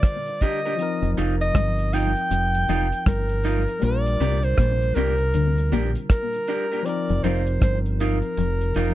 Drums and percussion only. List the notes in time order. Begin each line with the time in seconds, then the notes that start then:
0.03 kick, cross-stick, closed hi-hat
0.26 closed hi-hat
0.41 kick, closed hi-hat
0.65 closed hi-hat
0.79 closed hi-hat
1.02 closed hi-hat
1.17 closed hi-hat
1.41 closed hi-hat
1.55 kick, cross-stick, closed hi-hat
1.79 closed hi-hat
1.94 closed hi-hat
2.16 closed hi-hat
2.31 closed hi-hat
2.55 closed hi-hat
2.68 closed hi-hat
2.92 closed hi-hat
3.06 kick, cross-stick, closed hi-hat
3.29 closed hi-hat
3.43 closed hi-hat
3.68 closed hi-hat
3.82 closed hi-hat
4.06 closed hi-hat
4.21 closed hi-hat
4.43 closed hi-hat
4.58 kick, cross-stick, closed hi-hat
4.82 closed hi-hat
4.95 closed hi-hat
5.18 closed hi-hat
5.34 closed hi-hat
5.58 closed hi-hat
5.72 closed hi-hat
5.95 closed hi-hat
6.10 kick, cross-stick, closed hi-hat
6.33 closed hi-hat
6.47 closed hi-hat
6.72 closed hi-hat
6.86 closed hi-hat
7.09 closed hi-hat
7.24 closed hi-hat
7.47 closed hi-hat
7.62 kick, cross-stick, closed hi-hat
7.86 closed hi-hat
8.00 closed hi-hat
8.22 closed hi-hat
8.37 closed hi-hat
8.61 closed hi-hat
8.74 closed hi-hat